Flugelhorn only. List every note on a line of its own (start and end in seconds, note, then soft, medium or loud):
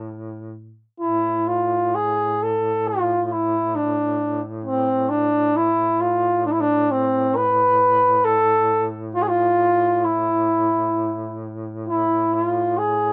1.00 1.49 E4 medium
1.48 1.96 F4 medium
1.95 2.44 G#4 medium
2.43 2.89 A4 medium
2.88 3.24 F4 medium
3.24 3.34 F4 soft
3.32 3.77 E4 medium
3.75 4.41 D4 medium
4.64 5.11 C4 medium
5.09 5.58 D4 medium
5.56 6.02 E4 medium
6.01 6.45 F4 medium
6.46 6.53 D4 medium
6.52 6.62 E4 medium
6.61 6.93 D4 medium
6.91 7.38 C4 medium
7.36 8.26 B4 medium
8.25 8.88 A4 loud
9.14 9.24 F4 medium
9.22 9.30 G#4 medium
9.28 10.06 F4 medium
10.04 11.44 E4 medium
11.89 12.34 E4 medium
12.34 12.45 E4 medium
12.45 12.80 F4 medium
12.78 13.13 G#4 medium